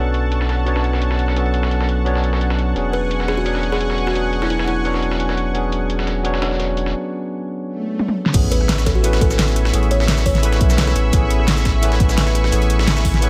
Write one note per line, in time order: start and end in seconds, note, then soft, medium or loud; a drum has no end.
0.00 2.74 B1 medium
0.00 0.65 F#3 medium
0.00 0.66 B3 medium
0.00 0.67 C#4 medium
0.00 0.67 D4 medium
0.00 1.38 A4 medium
0.00 0.68 C#5 loud
0.00 2.72 F#5 medium
0.00 2.72 A5 medium
0.00 2.72 C#6 medium
0.14 closed hi-hat medium
0.32 closed hi-hat medium
0.41 snare soft
0.49 snare soft
0.49 closed hi-hat medium
0.65 1.34 F#3 medium
0.65 1.34 B3 medium
0.65 1.34 C#4 medium
0.65 1.35 D4 medium
0.65 1.35 C#5 medium
0.65 closed hi-hat medium
0.76 snare soft
0.84 closed hi-hat medium
0.93 snare soft
1.02 closed hi-hat medium
1.11 snare soft
1.19 closed hi-hat medium
1.28 snare soft
1.35 2.03 F#3 medium
1.35 2.04 B3 medium
1.35 2.04 C#4 medium
1.35 2.05 D4 medium
1.35 2.05 A4 medium
1.35 closed hi-hat medium
1.46 closed hi-hat soft
1.54 closed hi-hat medium
1.63 snare medium
1.71 closed hi-hat medium
1.81 snare medium
1.89 closed hi-hat medium
2.04 2.73 F#3 medium
2.04 2.73 B3 medium
2.04 2.74 C#4 medium
2.04 2.74 D4 medium
2.04 2.75 C#5 loud
2.04 closed hi-hat medium
2.16 snare soft
2.24 closed hi-hat medium
2.33 snare medium
2.41 closed hi-hat medium
2.50 snare medium
2.59 closed hi-hat medium
2.75 6.95 E1 medium
2.75 3.43 F#3 medium
2.75 3.43 B3 medium
2.75 3.44 C#4 medium
2.75 3.44 D4 medium
2.75 3.44 G#4 medium
2.75 6.90 F#5 medium
2.75 6.90 G#5 medium
2.75 6.90 C#6 medium
2.75 closed hi-hat medium
2.93 3.27 B4 medium
2.93 closed hi-hat medium
3.11 closed hi-hat medium
3.20 snare soft
3.28 3.36 G#4 medium
3.28 snare soft
3.28 closed hi-hat medium
3.37 3.58 F#4 medium
3.44 4.13 F#3 medium
3.44 4.13 B3 medium
3.44 4.13 C#4 medium
3.44 4.14 D4 medium
3.44 4.14 C#5 loud
3.44 closed hi-hat medium
3.55 snare soft
3.63 closed hi-hat medium
3.72 4.05 G#4 medium
3.72 snare soft
3.81 closed hi-hat medium
3.90 snare soft
3.98 closed hi-hat medium
4.07 4.28 F#4 medium
4.07 snare soft
4.14 4.83 F#3 medium
4.14 4.83 B3 medium
4.14 4.83 C#4 medium
4.14 4.84 D4 medium
4.14 4.84 G#4 medium
4.14 closed hi-hat medium
4.25 closed hi-hat soft
4.33 closed hi-hat medium
4.42 4.47 E4 medium
4.42 snare medium
4.50 4.56 E4 medium
4.50 closed hi-hat medium
4.59 snare medium
4.68 5.17 E4 medium
4.68 closed hi-hat medium
4.84 5.52 F#3 medium
4.84 5.53 B3 medium
4.84 5.53 C#4 medium
4.84 5.53 D4 medium
4.84 5.54 C#5 loud
4.84 closed hi-hat medium
4.94 snare soft
5.02 closed hi-hat medium
5.11 snare medium
5.20 closed hi-hat medium
5.29 snare medium
5.37 closed hi-hat medium
5.54 6.22 F#3 medium
5.54 6.22 B3 medium
5.54 6.23 C#4 medium
5.54 6.23 D4 medium
5.54 6.24 G#4 medium
5.54 closed hi-hat medium
5.54 closed hi-hat loud
5.72 closed hi-hat medium
5.90 closed hi-hat medium
5.90 closed hi-hat loud
5.99 snare soft
6.07 snare soft
6.07 closed hi-hat medium
6.23 6.92 F#3 medium
6.23 6.92 B3 medium
6.23 6.93 C#4 medium
6.23 6.93 D4 medium
6.23 6.93 C#5 loud
6.23 closed hi-hat medium
6.34 snare soft
6.42 snare loud
6.42 closed hi-hat medium
6.51 snare soft
6.60 snare soft
6.60 closed hi-hat medium
6.77 closed hi-hat medium
6.86 snare soft
7.64 swell medium
7.99 high tom medium
8.08 high tom medium
8.26 snare medium
8.33 9.72 A1 loud
8.33 9.01 E3 medium
8.33 9.02 A3 medium
8.33 9.02 B3 medium
8.33 9.02 C#4 medium
8.33 9.03 G#4 medium
8.33 13.30 E5 medium
8.33 13.30 G#5 medium
8.33 13.30 B5 medium
8.33 13.30 C#6 medium
8.33 kick loud
8.33 closed hi-hat loud
8.33 closed hi-hat medium
8.33 crash loud
8.33 sub drop medium
8.33 cabasa medium
8.51 8.85 B4 medium
8.51 closed hi-hat medium
8.61 cross-stick soft
8.69 snare loud
8.69 closed hi-hat loud
8.69 closed hi-hat medium
8.69 cabasa medium
8.78 snare soft
8.78 cabasa medium
8.86 8.94 A4 medium
8.86 kick medium
8.86 cross-stick soft
8.86 snare soft
8.86 closed hi-hat medium
8.95 9.16 F#4 medium
9.02 9.71 E3 medium
9.02 9.71 A3 medium
9.02 9.72 B3 medium
9.02 9.72 C#4 medium
9.02 9.72 B4 loud
9.02 closed hi-hat medium
9.02 cabasa soft
9.13 snare soft
9.13 closed hi-hat soft
9.21 9.70 A4 medium
9.21 kick loud
9.21 closed hi-hat medium
9.21 cabasa soft
9.31 snare soft
9.31 cabasa medium
9.39 snare loud
9.39 closed hi-hat medium
9.39 closed hi-hat loud
9.39 cabasa medium
9.48 snare soft
9.48 closed hi-hat soft
9.48 cabasa soft
9.56 cross-stick soft
9.56 closed hi-hat medium
9.56 cabasa soft
9.65 cross-stick medium
9.65 snare medium
9.72 10.62 A1 loud
9.72 10.41 E3 medium
9.72 10.41 A3 medium
9.72 10.41 B3 medium
9.72 10.42 C#4 medium
9.72 10.42 G#4 medium
9.72 closed hi-hat medium
9.72 cabasa soft
9.83 closed hi-hat soft
9.91 10.18 C#5 medium
9.91 closed hi-hat medium
10.00 cross-stick soft
10.00 snare medium
10.08 snare loud
10.08 closed hi-hat loud
10.08 closed hi-hat medium
10.08 cabasa soft
10.17 snare medium
10.17 cabasa medium
10.26 10.61 C#5 medium
10.26 kick medium
10.26 closed hi-hat medium
10.26 open hi-hat medium
10.35 snare soft
10.35 closed hi-hat soft
10.42 11.11 E3 medium
10.42 11.11 A3 medium
10.42 11.11 B3 medium
10.42 11.12 C#4 medium
10.42 11.12 B4 loud
10.42 closed hi-hat medium
10.42 cabasa soft
10.52 snare soft
10.52 closed hi-hat soft
10.52 cabasa soft
10.61 10.94 B1 loud
10.61 kick loud
10.61 closed hi-hat medium
10.61 cabasa soft
10.70 snare medium
10.70 closed hi-hat soft
10.70 cabasa medium
10.78 snare loud
10.78 closed hi-hat loud
10.78 closed hi-hat medium
10.78 cabasa medium
10.87 cross-stick medium
10.87 snare medium
10.87 closed hi-hat soft
10.87 cabasa soft
10.96 11.11 A1 medium
10.96 closed hi-hat medium
10.96 cabasa soft
11.12 12.51 A1 medium
11.12 11.80 E3 medium
11.12 11.81 A3 medium
11.12 11.81 B3 medium
11.12 11.81 C#4 medium
11.12 11.82 G#4 medium
11.12 kick loud
11.12 closed hi-hat medium
11.12 cabasa soft
11.30 closed hi-hat medium
11.40 cross-stick soft
11.48 snare loud
11.48 closed hi-hat loud
11.48 closed hi-hat medium
11.48 cabasa soft
11.57 snare soft
11.57 cabasa medium
11.65 kick medium
11.65 cross-stick soft
11.65 snare soft
11.65 closed hi-hat medium
11.82 12.50 E3 medium
11.82 12.50 A3 medium
11.82 12.51 B3 medium
11.82 12.51 C#4 medium
11.82 12.52 B4 loud
11.82 closed hi-hat medium
11.82 cabasa soft
11.92 snare soft
11.92 closed hi-hat soft
12.00 kick loud
12.00 closed hi-hat medium
12.00 cabasa soft
12.09 snare soft
12.09 cabasa medium
12.18 snare loud
12.18 closed hi-hat medium
12.18 closed hi-hat loud
12.18 cabasa soft
12.27 snare soft
12.27 closed hi-hat soft
12.27 cabasa soft
12.35 cross-stick soft
12.35 closed hi-hat medium
12.35 cabasa soft
12.44 cross-stick medium
12.44 snare soft
12.51 13.30 A1 loud
12.51 13.20 E3 medium
12.51 13.20 A3 medium
12.51 13.20 B3 medium
12.51 13.21 C#4 medium
12.51 13.21 G#4 medium
12.51 closed hi-hat medium
12.51 cabasa soft
12.62 closed hi-hat soft
12.70 closed hi-hat medium
12.79 cross-stick soft
12.79 snare medium
12.87 snare loud
12.87 closed hi-hat medium
12.87 cabasa soft
12.97 snare medium
12.97 cabasa medium
13.05 kick medium
13.05 closed hi-hat medium
13.05 open hi-hat medium
13.14 snare soft
13.14 closed hi-hat soft
13.21 13.30 E3 medium
13.21 13.30 A3 medium
13.21 13.30 B3 medium
13.21 13.30 C#4 medium
13.21 13.30 B4 loud
13.21 closed hi-hat medium
13.21 cabasa soft